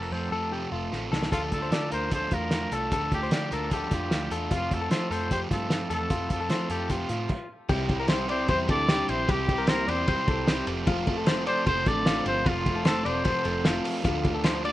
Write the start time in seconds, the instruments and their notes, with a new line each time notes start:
Already playing: overdriven electric guitar F3 A3 C4 A4, trumpet A4
0.02 clean electric guitar A#4
0.11 picked electric bass F2, overdriven electric guitar F3 A3 C4 A4, trumpet A4, clean electric guitar C5
0.31 picked electric bass F2, overdriven electric guitar F3 A3 C4 A4, clean electric guitar A4
0.52 overdriven electric guitar F2 C3 F3 A3 C4 A4, clean electric guitar G4
0.72 picked electric bass F1, overdriven electric guitar F3 A3 C4 A4, clean electric guitar F4
0.91 picked electric bass A1, overdriven electric guitar F3 A3 C4 A4, snare
1.11 picked electric bass C2, overdriven electric guitar F3 A3 C4 A4, clean electric guitar A4, snare
1.23 snare
1.32 picked electric bass D2, overdriven electric guitar D3 F3 A3 D4 F4, trumpet F4, clean electric guitar A4, kick, closed hi-hat
1.52 picked electric bass D2, overdriven electric guitar A3 D4 F4, trumpet A4, kick, closed hi-hat
1.62 clean electric guitar C5
1.71 picked electric bass D3, overdriven electric guitar F3 A3 D4 F4, clean electric guitar D5, snare, closed hi-hat
1.91 picked electric bass D2, overdriven electric guitar A3 D4 F4, clean electric guitar A#4, trumpet C5, closed hi-hat
2.10 overdriven electric guitar D3 F3 A3 D4 F4, clean electric guitar A4, kick, closed hi-hat
2.14 trumpet C5
2.30 picked electric bass E2, overdriven electric guitar A3 D4 F4, clean electric guitar F4, trumpet A#4, kick, closed hi-hat
2.51 overdriven electric guitar F3 A3 D4 F4, snare, closed hi-hat
2.70 picked electric bass C2, overdriven electric guitar A3 D4 F4, clean electric guitar A4, closed hi-hat
2.74 trumpet A4
2.91 picked electric bass D2, overdriven electric guitar D3 F3 A3 D4 F4, clean electric guitar A4, kick, closed hi-hat
3.12 picked electric bass D2, overdriven electric guitar A3 D4 F4, trumpet G4, kick, closed hi-hat
3.23 clean electric guitar C5
3.30 picked electric bass D3, overdriven electric guitar F3 A3 D4 F4, clean electric guitar D5, snare, closed hi-hat
3.51 picked electric bass D2, overdriven electric guitar A3 D4 F4, trumpet A4, clean electric guitar A#4, closed hi-hat
3.70 overdriven electric guitar D3 F3 A3 D4 F4, trumpet G4, clean electric guitar A4, kick, closed hi-hat
3.89 picked electric bass F2, overdriven electric guitar A3 D4 F4, clean electric guitar F4, kick, snare, closed hi-hat
4.10 picked electric bass D2, overdriven electric guitar F3 A3 D4 F4, snare, closed hi-hat
4.30 picked electric bass E2, overdriven electric guitar A3 D4 F4, clean electric guitar A4, closed hi-hat
4.51 picked electric bass F2, overdriven electric guitar F2 C3 F3 A3 C4 F4, clean electric guitar F4, kick, closed hi-hat
4.55 trumpet F4
4.71 picked electric bass F2, overdriven electric guitar F3 A3 C4 F4, trumpet A4, kick, closed hi-hat
4.81 clean electric guitar A4
4.90 overdriven electric guitar F3 A3 C4 F4, picked electric bass F3, clean electric guitar C5, snare, closed hi-hat
5.10 picked electric bass F2, overdriven electric guitar F3 A3 C4 F4, clean electric guitar A4, trumpet C5, closed hi-hat
5.30 overdriven electric guitar F2 C3 F3 A3 C4 F4, clean electric guitar G4, trumpet C5, kick, closed hi-hat
5.49 picked electric bass G2, overdriven electric guitar F3 A3 C4 F4, clean electric guitar F4, trumpet A4, kick, snare, closed hi-hat
5.69 overdriven electric guitar F3 A3 C4 F4, snare, closed hi-hat
5.90 picked electric bass E2, overdriven electric guitar F3 A3 C4 F4, clean electric guitar A4, trumpet A4, closed hi-hat
6.09 overdriven electric guitar F2 C3 F3 A3 C4 F4, picked electric bass F2, clean electric guitar F4, kick, closed hi-hat
6.29 picked electric bass F2, overdriven electric guitar F3 A3 C4 F4, trumpet A4, kick, closed hi-hat
6.41 clean electric guitar A4
6.49 picked electric bass F3, overdriven electric guitar F3 A3 C4 F4, clean electric guitar C5, snare, closed hi-hat
6.70 picked electric bass F2, overdriven electric guitar F3 A3 C4 F4, trumpet G4, clean electric guitar A4, closed hi-hat
6.89 overdriven electric guitar F2 C3 F3 A3 C4 F4, trumpet F4, clean electric guitar G4, kick, closed hi-hat
7.09 picked electric bass A2, overdriven electric guitar F3 A3 C4 F4, clean electric guitar F4, snare, closed hi-hat
7.29 kick, crash
7.69 picked electric bass C2, overdriven electric guitar C3 G3 C4 E4 G4, clean electric guitar G4, analog synth pad G4 C5 E5 C6, kick, crash
7.89 overdriven electric guitar C4 E4 G4, kick, ride
8.00 clean electric guitar A#4
8.08 overdriven electric guitar G3 C4 E4 G4, clean electric guitar C5, snare, ride
8.28 vibraphone C4, overdriven electric guitar C4 E4 G4, trumpet C5, clean electric guitar D5, ride
8.48 picked electric bass E2, overdriven electric guitar C3 G3 C4 E4 G4, vibraphone C4, clean electric guitar C5, trumpet C5, kick, ride
8.67 picked electric bass D2, overdriven electric guitar C4 E4 G4, vibraphone D4, clean electric guitar A4, trumpet D5, kick, ride
8.88 overdriven electric guitar G3 C4 E4 G4, clean electric guitar G4, snare, ride
9.08 picked electric bass A#1, overdriven electric guitar C4 E4 G4, trumpet C5, ride
9.27 picked electric bass C2, overdriven electric guitar C3 G3 C4 E4 G4, vibraphone G3, clean electric guitar G4, trumpet G4, kick, ride
9.49 overdriven electric guitar C4 E4 G4, kick, ride
9.58 clean electric guitar A#4
9.67 overdriven electric guitar G3 C4 E4 G4, vibraphone A#3, trumpet A#4, clean electric guitar C5, snare, ride
9.88 picked electric bass E2, overdriven electric guitar C4 E4 G4, vibraphone C4, trumpet C5, clean electric guitar D5, ride
10.07 overdriven electric guitar C3 G3 C4 E4 G4, clean electric guitar C5, kick, ride
10.28 picked electric bass C2, overdriven electric guitar C4 E4 G4, clean electric guitar A4, kick, ride
10.47 overdriven electric guitar G3 C4 E4 G4, clean electric guitar G4, snare, ride
10.67 picked electric bass F1, overdriven electric guitar F3 A3 C4 A4, analog synth pad A4 A5 C6, ride
10.87 overdriven electric guitar F2 C3 F3 A3 C4 A4, clean electric guitar F4, kick, ride
11.06 overdriven electric guitar F3 A3 C4 A4, kick, ride
11.17 clean electric guitar A4
11.26 overdriven electric guitar F3 A3 C4 A4, clean electric guitar C5, snare, ride
11.46 overdriven electric guitar F3 A3 C4 A4, vibraphone C4, trumpet C5, clean electric guitar D5, ride
11.66 picked electric bass F1, overdriven electric guitar F2 C3 F3 A3 C4 A4, vibraphone C4, clean electric guitar C5, trumpet C5, kick, ride
11.85 picked electric bass A1, overdriven electric guitar F3 A3 C4 A4, vibraphone D4, clean electric guitar A4, trumpet D5, kick, snare, ride
12.04 overdriven electric guitar F3 A3 C4 A4, clean electric guitar F4, snare, ride
12.25 picked electric bass G1, overdriven electric guitar F3 A3 C4 A4, vibraphone C4, trumpet C5, ride
12.45 picked electric bass F1, overdriven electric guitar F2 C3 F3 A3 C4 A4, vibraphone F3, clean electric guitar F4, trumpet F4, kick, ride
12.65 overdriven electric guitar F3 A3 C4 A4, kick, ride
12.76 clean electric guitar A4
12.84 overdriven electric guitar F3 A3 C4 A4, vibraphone A3, trumpet A4, clean electric guitar C5, snare, ride
13.05 picked electric bass E1, overdriven electric guitar F3 A3 C4 A4, vibraphone C4, trumpet C5, clean electric guitar D5, ride
13.25 overdriven electric guitar F2 C3 F3 A3 C4 A4, clean electric guitar C5, kick, ride
13.44 picked electric bass F1, overdriven electric guitar F3 A3 C4 A4, clean electric guitar A4, ride
13.64 overdriven electric guitar F3 A3 C4 A4, clean electric guitar F4, snare, ride
13.84 overdriven electric guitar F3 A3 C4 A4, open hi-hat, ride
14.03 picked electric bass D2, overdriven electric guitar D3 F3 A3 D4 F4, clean electric guitar F4, analog synth pad D5 D6, kick, hi-hat pedal, ride
14.23 overdriven electric guitar A3 D4 F4, kick, ride
14.35 clean electric guitar A4
14.43 overdriven electric guitar F3 A3 D4 F4, clean electric guitar C5, snare, ride
14.64 overdriven electric guitar A3 D4 F4, vibraphone D4, clean electric guitar D5, trumpet D5, ride